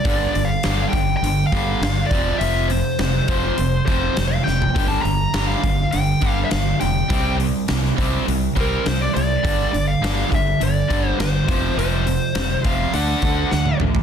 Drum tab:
HH |o-o-o-o-o-o-o-o-|o-o-o-o-o-o-o---|o-o-o-o-o-o-o-o-|o-o-o-o-o-o-o-o-|
SD |----o-------o---|----o-------o-o-|----oo------o---|----oo------o---|
T1 |----------------|----------------|----------------|----------------|
T2 |----------------|----------------|----------------|----------------|
FT |----------------|---------------o|----------------|----------------|
BD |o-----o---o---o-|------o---o-----|o-----o---o-----|o-----o---o-----|

HH |o-o-o-o-o-o-o-o-|o-o-o-o-o-o-----|
SD |----o-------o---|----o-------o---|
T1 |----------------|-------------o--|
T2 |----------------|--------------o-|
FT |----------------|---------------o|
BD |o-----o---o---o-|------o---o-----|